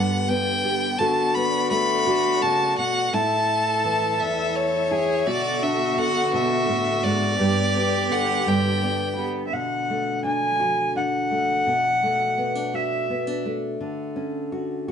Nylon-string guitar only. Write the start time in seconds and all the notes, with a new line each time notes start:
Already playing: G2 D3 B3 G4
0.29 B3
0.65 G4
1.00 D3 F#4
1.36 B3
1.71 A3
2.07 D3
2.43 C#3
2.78 B2
3.13 A2 E4
3.85 E3
4.20 E2
4.91 E4
5.27 B2 F#4
5.98 D3
6.33 B2
6.69 A2
7.04 G#2
7.39 G2 G4
7.76 B3
8.11 D3
8.46 G2
8.82 B3
9.18 G4
9.53 B2
9.90 A3
10.24 D4
10.60 F#4
10.96 D4
11.31 A3
11.67 B2
12.03 A3
12.38 B3
12.55 D4
12.74 F#4
13.10 B3
13.27 D4
13.46 A3
13.81 D3
14.16 C#4
14.52 F#4
14.88 F#4